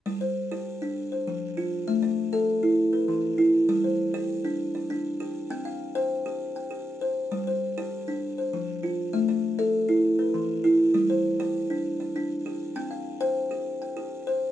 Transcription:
\new Staff \with { instrumentName = "Kalimba" } { \time 12/8 \key g \mixolydian \tempo 4. = 132 << { d''8 c''4 d''4. r8 c''4. r4 | e''8 d''4 e''4. r8 b'4. r4 | d''8 c''4 d''4. r8 d''4. r4 | g''8 f''4 g''4. r8 g''4. r4 |
d''8 c''4 d''4. r8 c''4. r4 | e''8 d''4 e''4. r8 b'4. r4 | d''8 c''4 d''4. r8 d''4. r4 | g''8 f''4 g''4. r8 g''4. r4 | } \\ { g4 r8 g'4 d'8 r4 f4 f'4 | a4 r8 a'4 e'8 r4 e4 e'4 | g4 r8 g'4 d'4 r8 d'4 g'4 | c'4 r8 c''4 g'4 r8 g'4 c''4 |
g4 r8 g'4 d'8 r4 f4 f'4 | a4 r8 a'4 e'8 r4 e4 e'4 | g4 r8 g'4 d'4 r8 d'4 g'4 | c'4 r8 c''4 g'4 r8 g'4 c''4 | } >> }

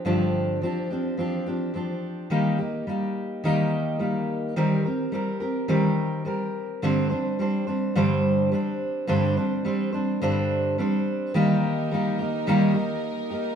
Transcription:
<<
  \new Staff \with { instrumentName = "String section" } { \time 4/4 \key ees \major \tempo 4 = 106 r1 | r1 | r1 | r1 |
r1 | <g ees' bes'>1 | }
  \new Staff \with { instrumentName = "Steel-string acoustic guitar" } { \time 4/4 \key ees \major <g, d f c' d' g'>4 <f c' d' g'>8 <f c' d' g'>8 <f c' d' g'>8 <f c' d' g'>8 <f c' d' g'>4 | <ees g bes ees' g'>8 <bes ees' g'>8 <g bes ees' g'>4 <ees g bes ees' g'>4 <g bes ees' g'>4 | <ees g c' g' bes'>8 <c' g' bes'>8 <g c' g' bes'>8 <c' g' bes'>8 <ees g c' g' bes'>4 <g c' g' bes'>4 | <g, d g c' d' c''>8 <g c' d' c''>8 <g c' d' c''>8 <g c' d' c''>8 <g, d g c' d' c''>4 <g c' d' c''>4 |
<g, d g c' d' c''>8 <g c' d' c''>8 <g c' d' c''>8 <g c' d' c''>8 <g, d g c' d' c''>4 <g c' d' c''>4 | <ees g bes ees' g'>4 <g bes ees' g'>8 <bes ees' g'>8 <ees g bes ees' g'>8 <bes ees' g'>4 <bes ees' g'>8 | }
>>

